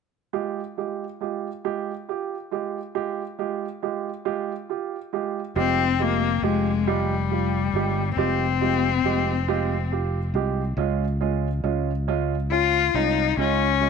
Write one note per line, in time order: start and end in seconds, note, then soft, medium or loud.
0.33 0.59 G#3 medium
0.33 0.59 F4 medium
0.33 0.59 G4 medium
0.77 1.03 G#3 soft
0.77 1.03 F4 soft
0.77 1.04 G4 soft
1.20 1.47 G#3 soft
1.20 1.47 F4 soft
1.20 1.47 G4 medium
1.65 1.90 G#3 medium
1.65 1.90 F4 medium
1.65 1.91 G4 medium
2.09 2.34 F4 soft
2.09 2.34 G4 medium
2.51 2.78 G#3 medium
2.51 2.77 F4 soft
2.51 2.78 G4 medium
2.95 3.21 G#3 medium
2.95 3.21 F4 medium
2.95 3.21 G4 medium
3.39 3.64 G#3 medium
3.39 3.65 F4 soft
3.39 3.65 G4 medium
3.82 4.08 G#3 medium
3.82 4.08 F4 soft
3.82 4.09 G4 medium
4.25 4.51 G#3 medium
4.25 4.51 F4 medium
4.25 4.52 G4 medium
4.70 4.95 F4 medium
4.70 4.96 G4 medium
5.13 5.39 G#3 medium
5.13 5.39 F4 medium
5.13 5.39 G4 medium
5.56 6.39 F1 medium
5.56 5.82 G#3 medium
5.56 6.03 C4 medium
5.56 5.82 F4 medium
5.56 5.82 G4 medium
5.99 6.25 G#3 medium
5.99 6.46 A#3 medium
5.99 6.26 F4 medium
5.99 6.26 G4 medium
6.42 7.69 F1 medium
6.42 6.69 G#3 medium
6.42 6.89 G#3 medium
6.42 6.69 F4 medium
6.42 6.69 G4 medium
6.87 8.17 G3 medium
6.87 7.13 G#3 medium
6.87 7.13 F4 medium
6.87 7.13 G4 medium
7.31 7.57 F4 medium
7.31 7.57 G4 medium
7.73 8.14 G1 medium
7.73 8.00 G#3 medium
7.73 8.01 F4 medium
7.73 8.01 G4 medium
8.17 9.00 F1 loud
8.17 8.44 G#3 medium
8.17 9.87 C4 medium
8.17 8.44 F4 medium
8.17 8.44 G4 medium
8.61 8.87 G#3 medium
8.61 8.87 F4 medium
8.61 8.87 G4 medium
9.04 10.30 F1 medium
9.04 9.30 G#3 medium
9.04 9.30 F4 medium
9.04 9.31 G4 medium
9.48 9.74 G#3 medium
9.48 9.74 F4 medium
9.48 9.74 G4 medium
9.92 10.17 F4 medium
9.92 10.18 G4 medium
10.34 10.75 C2 medium
10.34 10.60 G#3 medium
10.34 10.61 F4 medium
10.34 10.61 G4 medium
10.77 11.60 C#2 medium
10.77 11.04 G#3 medium
10.77 11.04 C#4 medium
10.77 11.04 F4 medium
11.21 11.47 G#3 medium
11.21 11.47 C#4 medium
11.21 11.47 F4 medium
11.64 12.90 C#2 medium
11.64 11.90 G#3 medium
11.64 11.90 C#4 medium
11.64 11.90 F4 medium
12.08 12.34 G#3 medium
12.08 12.34 C#4 medium
12.08 12.34 F4 medium
12.51 12.77 C#4 medium
12.51 12.97 F4 medium
12.51 12.78 F4 medium
12.94 13.35 C2 medium
12.94 13.21 G#3 medium
12.94 13.21 C#4 medium
12.94 13.38 D#4 medium
12.94 13.21 F4 medium
13.37 13.89 C#2 medium
13.37 13.64 G#3 medium
13.37 13.64 C#4 medium
13.37 13.89 C#4 medium
13.37 13.65 F4 medium
13.81 13.89 G#3 medium
13.81 13.89 C#4 medium
13.81 13.89 F4 medium